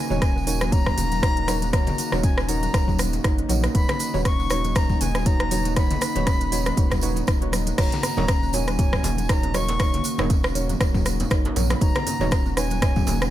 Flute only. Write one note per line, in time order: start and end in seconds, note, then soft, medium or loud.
0.00 0.74 G#5 loud
0.72 1.73 A#5 loud
1.73 2.20 A#5 loud
2.23 2.50 G#5 loud
2.49 2.99 A#5 loud
3.75 4.22 B5 loud
4.25 4.78 C#6 loud
4.76 5.03 A#5 loud
5.01 5.28 G#5 loud
5.26 5.76 A#5 loud
5.77 7.24 B5 loud
7.79 8.56 A#5 loud
8.54 9.31 G#5 loud
9.30 9.57 A#5 loud
9.55 10.31 C#6 loud
11.75 11.83 B5 medium
11.82 12.57 A#5 loud
12.57 13.30 G#5 loud